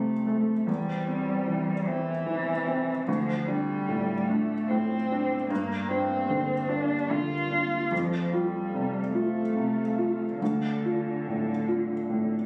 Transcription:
Already playing: F2 C3 A3 C4 C5 F5
0.27 A3
0.67 E2 G3 E4
1.08 C4
1.48 E3
1.87 E3 C4
2.26 E3
2.67 C4
3.07 D2 F3 A3 F4 D5
3.46 G3 D4
3.89 A2
4.28 A3 D4
4.68 A2 C4
5.12 D4
5.49 G2 A#3 G4
5.88 C4 D4
6.30 D3
6.68 D4
7.10 D3 F4
7.51 D4
7.90 F2 F3 C4 A4 F5
8.32 G3 F4
8.74 C3
9.13 A3 F4
9.56 C3
9.98 F4
10.39 D2 D3 D4
10.85 F4
11.28 A2
11.68 F4
12.10 A2

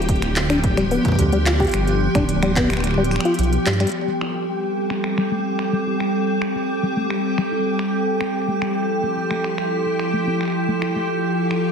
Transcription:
Already playing: D1 F3 B3 G4 G5
0.02 closed hi-hat
0.09 kick, closed hi-hat
0.15 closed hi-hat
0.22 finger snap, closed hi-hat
0.36 clap, closed hi-hat
0.50 D4, finger snap, open hi-hat
0.64 kick, closed hi-hat
0.77 G3, finger snap, closed hi-hat
0.91 B3, open hi-hat
1.05 kick, closed hi-hat
1.08 kick
1.12 kick
1.15 kick, closed hi-hat
1.19 D2, kick
1.22 kick
1.26 kick
1.29 G3, kick, closed hi-hat
1.46 F4, clap, closed hi-hat
1.60 G4, kick, closed hi-hat
1.62 closed hi-hat
1.65 closed hi-hat
1.67 closed hi-hat
1.69 closed hi-hat
1.71 G1, finger snap, closed hi-hat
1.74 closed hi-hat
1.87 closed hi-hat
2.15 D1 D4, finger snap, kick, closed hi-hat
2.29 closed hi-hat
2.43 G3, finger snap, closed hi-hat
2.56 B3, kick, clap, closed hi-hat
2.70 finger snap, open hi-hat
2.73 finger snap
2.77 finger snap
2.80 finger snap
2.84 finger snap, closed hi-hat
2.87 finger snap
2.91 finger snap
2.94 G3, finger snap
3.04 closed hi-hat
3.11 finger snap, open hi-hat
3.16 finger snap
3.20 finger snap
3.25 F4, closed hi-hat
3.34 closed hi-hat
3.39 B1, closed hi-hat
3.43 closed hi-hat
3.53 closed hi-hat
3.66 G2 G3, clap, closed hi-hat
3.73 closed hi-hat
3.80 G3, finger snap, closed hi-hat
3.87 closed hi-hat
3.89 closed hi-hat
3.92 A4 G5, closed hi-hat
3.94 G3 C4 G4, closed hi-hat
3.96 closed hi-hat
3.98 closed hi-hat
4.08 G3
4.21 E4, finger snap
4.35 G4
4.90 C4, finger snap
5.04 finger snap
5.18 G3, finger snap
5.32 A3
5.59 finger snap
5.73 G3
5.87 E4
6.00 G4, finger snap
6.42 finger snap
6.55 C4
6.83 G3
6.97 A3
7.10 finger snap
7.38 G3, finger snap
7.52 E4
7.65 G4
7.79 finger snap
8.21 C4, finger snap
8.34 F3 E4
8.48 A3
8.62 C4, finger snap
9.03 A3
9.17 F4
9.31 A3, finger snap
9.44 finger snap
9.58 finger snap
9.86 E4
9.99 finger snap
10.13 A3
10.27 C4
10.41 finger snap
10.43 finger snap
10.45 finger snap
10.48 finger snap
10.50 finger snap
10.52 F4, finger snap
10.68 A3
10.82 F4, finger snap
10.96 A3
11.51 E4, finger snap

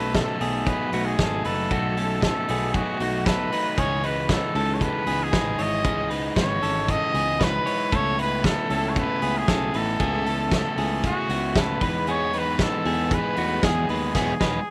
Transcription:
Already playing: B1 F#3 A3 C#4 D#4 A4 B4
0.13 B2 F#3 A3 D#4 A4, kick, snare, closed hi-hat
0.39 B1 F#3 A3 B3 D#4 G#4, open hi-hat
0.65 B2 F#3 A3 D#4 B4, kick, closed hi-hat
0.92 B1 F#3 A3 D#4 F#4, open hi-hat
1.06 G#4
1.18 G#1 B2 F#3 A3 D#4 A4, kick, snare, closed hi-hat
1.44 F#1 F#3 A3 D#4 A4 B4, open hi-hat
1.70 B1 B2 F#3 A3 D#4 F#4, kick, closed hi-hat
1.97 F#3 A3 C#4 D#4 A4, open hi-hat
2.21 B2 F#3 A3 D#4 A4, kick, snare, closed hi-hat
2.48 B1 F#3 A3 B3 D#4 G#4, open hi-hat
2.74 B2 F#3 A3 D#4 F#4, kick, closed hi-hat
3.00 B1 F#3 A3 D#4 F#4, open hi-hat
3.26 B2 F#3 A3 D#4 A4 B4, kick, snare, closed hi-hat
3.52 F#3 A3 D#4 B4, open hi-hat
3.77 C#2 C#3 E3 G#3 C#4 D#4 G#4 C#5, kick, closed hi-hat
4.03 E3 G#3 D#4 B4, open hi-hat
4.29 C#3 E3 G#3 D#4 A4, kick, snare, closed hi-hat
4.55 C#2 E3 G#3 C#4 D#4 A4, open hi-hat
4.74 C#5
4.81 C#3 E3 G#3 D#4 B4, kick, closed hi-hat
5.06 C#2 E3 G#3 B3 D#4 G#4, open hi-hat
5.23 G#4
5.32 A1 C#3 E3 G#3 D#4 B4, kick, snare, closed hi-hat
5.58 G#1 E3 G#3 D#4 E4 C#5, open hi-hat
5.63 D#5
5.84 C#2 C#3 E3 G#3 C#4 D#4 G#4, kick, closed hi-hat
6.10 E3 G#3 D#4 B4, open hi-hat
6.36 G#1 C#3 E3 G#3 D#4 C#5, kick, snare, closed hi-hat
6.62 G#1 E3 G#3 C#4 D#4 A4, open hi-hat
6.88 C#3 E3 G#3 D#4 D#5, kick, closed hi-hat
7.14 C#2 E3 G#3 B3 D#4 G#4, open hi-hat
7.40 C#3 E3 G#3 D#4 B4, kick, snare, closed hi-hat
7.66 E3 G#3 D#4 E4 C#5, open hi-hat
7.92 C#2 C#3 A3 B3 C#4 E4 A4 C#5, kick, closed hi-hat
8.18 A3 B3 D#4 E4 B4, open hi-hat
8.44 C#3 A3 B3 E4 A4, kick, snare, closed hi-hat
8.70 C#2 A3 B3 C#4 E4 A4, open hi-hat
8.89 C#5
8.96 C#3 A3 B3 E4 B4, kick, closed hi-hat
9.22 C#2 A3 B3 E4 G#4, open hi-hat
9.38 G#4
9.48 B1 C#3 A3 B3 C#4 E4 A4, kick, snare, closed hi-hat
9.74 A1 A3 B3 D#4 E4 A4 B4, open hi-hat
10.00 C#2 C#3 A3 B3 E4 G#4, kick, closed hi-hat
10.26 A3 B3 C#4 E4 A4, open hi-hat
10.52 C#3 A3 B3 E4 A4, kick, snare, closed hi-hat
10.77 C#2 A3 B3 E4 G#4, open hi-hat
11.03 C#3 A3 B3 E4 F#4, kick, closed hi-hat
11.29 C#2 A3 B3 E4 F#4, open hi-hat
11.56 C#3 A3 B3 C#4 E4 A4 B4, kick, snare, closed hi-hat
11.81 E2 G#3 B3 D#4 B4, kick, open hi-hat
12.07 E3 G#3 B3 D#4 G#4 C#5, closed hi-hat
12.33 G#3 B3 D#4 B4, open hi-hat
12.39 B4
12.59 E3 G#3 B3 D#4 A4, kick, snare, closed hi-hat
12.85 E2 G#3 B3 D#4 G#4, open hi-hat
13.11 E3 G#3 B3 D#4 B4, kick, closed hi-hat
13.37 E2 G#3 A3 B3 D#4 F#4, open hi-hat
13.63 E2 E3 G#3 B3 D#4 G#4, kick, snare, closed hi-hat
13.89 D#2 G#3 B3 D#4 G#4 B4, open hi-hat
14.15 E1 E3 G#3 B3 D#4 G#4, kick, snare, crash
14.40 E1 G#3 B3 D#4 B4, kick, snare

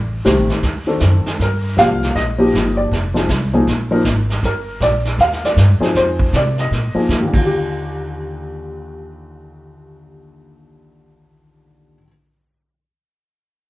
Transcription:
Already playing: A1 D5
0.25 C2 D#3 A3 C4 G4, kick, snare, hi-hat pedal
0.38 A1
0.49 G1, snare
0.63 D2, brush sweep, kick, snare
0.87 D#3 C4 D4 A4
1.00 F#2, kick, snare, hi-hat pedal
1.26 muted upright bass stroke, snare
1.39 G2 A#4, brush sweep, kick, snare
1.77 C2 F3 A#3 D4 G4 F5, kick, snare, hi-hat pedal
2.02 snare
2.15 A#1 D#5, brush sweep, kick, snare
2.38 F3 A#3 D#4 G4
2.54 G1, kick, snare, hi-hat pedal
2.77 D5
2.91 F1, brush sweep, kick, snare
3.14 F3 C4 D#4 G#4, snare
3.29 C2, kick, snare, hi-hat pedal
3.53 F3 A#3 D#4 G#4
3.67 A#1, brush sweep, kick, snare
3.91 F3 A#3 D#4 A#4
4.05 G#1, kick, snare, hi-hat pedal
4.30 snare
4.43 G1 A#4, brush sweep, kick, snare
4.80 A#1 D5, kick, snare, hi-hat pedal
5.05 snare
5.18 D#2 F5, brush sweep, kick, snare
5.32 snare
5.44 D5, snare
5.57 G2, kick, snare, hi-hat pedal
5.80 F3 C4 D#4 G#4, muted upright bass stroke, snare
5.95 F2 C5, brush sweep, kick, snare
6.19 kick
6.33 C3 D5, kick, snare, hi-hat pedal
6.58 D#5, snare
6.71 A#2, brush sweep, kick, snare
6.95 F3 A#3 D#4 G#4, muted upright bass stroke
7.09 D3, kick, snare, hi-hat pedal
7.20 D#2
7.29 D3
7.34 D#2 F4, kick, crash
7.45 G4

